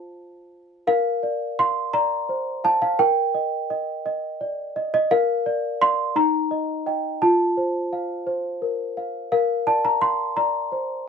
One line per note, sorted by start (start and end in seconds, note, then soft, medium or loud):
0.00 0.82 F4 medium
0.00 0.83 C5 soft
0.00 0.84 F5 soft
0.00 0.92 A5 medium
0.87 2.95 A#4 medium
0.87 1.58 F5 loud
1.23 1.80 D5 medium
1.59 2.16 F5 medium
1.59 1.94 C6 loud
1.94 2.50 D5 medium
1.94 2.64 A#5 medium
2.29 2.65 C5 soft
2.64 2.81 F5 medium
2.64 2.82 A5 loud
2.82 3.00 F5 medium
2.99 5.05 A#4 medium
2.99 4.92 G5 loud
3.34 3.69 D#5 medium
3.70 4.05 D#5 medium
4.06 4.61 D#5 medium
4.41 4.75 D5 soft
4.76 4.93 D#5 medium
4.94 5.11 D#5 loud
5.11 6.12 A#4 medium
5.11 5.80 F5 loud
5.46 5.80 D5 medium
5.81 6.12 D5 medium
5.81 6.12 F5 medium
5.81 6.15 C6 loud
6.16 7.17 D#4 medium
6.16 7.20 A#5 loud
6.51 6.85 D#5 medium
6.86 7.17 D#5 soft
6.86 7.17 G5 medium
7.22 9.29 F4 medium
7.22 8.26 A5 loud
7.57 8.12 C5 soft
7.93 8.48 F5 soft
8.27 8.82 C5 soft
8.62 8.96 A#4 soft
8.97 9.31 F5 soft
9.32 11.08 A#4 medium
9.32 9.67 F5 medium
9.67 10.23 D5 soft
9.67 9.84 A5 medium
9.85 10.02 A#5 medium
10.02 10.58 F5 soft
10.02 10.37 C6 medium
10.37 10.93 D5 soft
10.37 11.07 A#5 medium
10.72 11.07 C5 soft